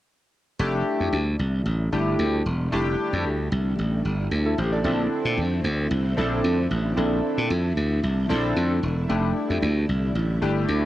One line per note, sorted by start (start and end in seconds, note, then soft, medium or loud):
0.59 0.82 F1 loud
0.59 9.05 D3 medium
0.59 4.81 G3 medium
0.59 1.16 A3 medium
0.59 10.85 A3 medium
0.59 1.16 D4 medium
0.59 10.85 E4 medium
0.59 1.16 E4 medium
0.59 1.16 G4 medium
1.00 1.11 F2 medium
1.13 1.35 D2 medium
1.39 1.62 C2 medium
1.66 1.88 A1 loud
1.92 2.15 G1 medium
1.92 2.35 A3 medium
1.92 2.35 D4 medium
1.92 2.35 E4 medium
1.92 2.35 G4 medium
2.19 2.41 D2 loud
2.46 2.68 E1 medium
2.72 2.95 F1 loud
2.72 3.28 A3 medium
2.72 3.28 D4 medium
2.72 3.29 E4 medium
2.72 3.29 G4 loud
3.13 3.25 F2 loud
3.25 3.48 D2 medium
3.52 3.74 C2 medium
3.78 4.01 A1 medium
4.05 4.27 G1 medium
4.31 4.54 D2 loud
4.46 4.58 E4 medium
4.46 4.57 A4 medium
4.58 4.81 A1 loud
4.58 4.72 G4 medium
4.58 4.72 C5 medium
4.72 4.84 A4 medium
4.72 4.97 D5 medium
4.84 5.07 A#1 loud
4.84 5.41 C4 medium
4.84 6.95 C4 medium
4.84 5.41 D4 medium
4.84 5.41 E4 medium
4.84 5.41 A4 medium
5.25 5.39 A#2 medium
5.38 5.60 F2 medium
5.64 5.87 D2 medium
5.91 6.13 C2 loud
6.17 6.40 A#1 medium
6.17 6.60 C4 medium
6.17 6.60 D4 medium
6.17 6.60 E4 medium
6.17 6.60 A4 medium
6.44 6.66 F2 medium
6.71 6.93 A1 medium
6.96 7.20 A#1 loud
6.96 7.53 C4 medium
6.96 7.53 D4 medium
6.96 9.07 D4 medium
6.96 7.53 E4 medium
6.96 7.53 A4 medium
7.38 7.48 A#2 medium
7.50 7.73 F2 medium
7.77 7.99 D2 medium
8.03 8.26 C2 loud
8.29 8.52 A#1 medium
8.29 8.72 C4 medium
8.29 8.72 D4 medium
8.29 8.72 E4 medium
8.29 8.73 A4 medium
8.56 8.79 F2 loud
8.83 9.05 E1 medium
9.09 9.32 F1 loud
9.09 10.85 D3 medium
9.09 10.85 G3 medium
9.09 9.65 A3 medium
9.09 9.66 D4 medium
9.09 9.66 E4 medium
9.09 9.66 G4 medium
9.50 9.60 F2 medium
9.62 9.85 D2 medium
9.89 10.11 C2 medium
10.15 10.38 A1 loud
10.42 10.64 G1 medium
10.42 10.85 A3 medium
10.42 10.85 D4 medium
10.42 10.85 E4 medium
10.42 10.85 G4 medium
10.68 10.85 D2 loud